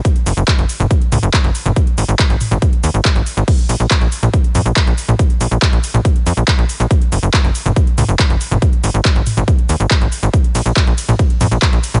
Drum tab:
CC |----------------|----------------|x---------------|----------------|
RD |----------------|----------------|----------------|----------------|
HH |xxoxxxo-xxoxxxox|xxo-xxoxxxoxxxo-|xxoxxxo-xxoxxxox|xxoxxxoxxxoxxxox|
SH |x-xxx-xxx-xxx-xx|x-xxx-xxx-xxx-xx|x-xxx-xxx-xxx-xx|x-xxx-xxx-xxx-xx|
CP |----x-------x---|----x-------x---|----x-------x---|----x-------x---|
T2 |-------o--o----o|------oo--------|-------o--o----o|-------o--------|
BD |o---o---o---o---|o---o---o---o---|o---o---o---o---|o---o---o---o---|

CC |----------------|----------------|----------------|
RD |----------------|----------------|--x---x---x---x-|
HH |xxoxxxoxxxo-xxox|xxo-xxo-xxoxxxox|xxoxxxoxxxoxxxo-|
SH |x-xxx-xxx-xxx-xx|x-xxx-xxx-xxx-xx|x-xxx-xxx-xxx-xx|
CP |----x-------x---|----x-------x---|----x-------x---|
T2 |-------o--o----o|------oo--------|-------o--o----o|
BD |o---o---o---o---|o---o---o---o---|o---o---o---o---|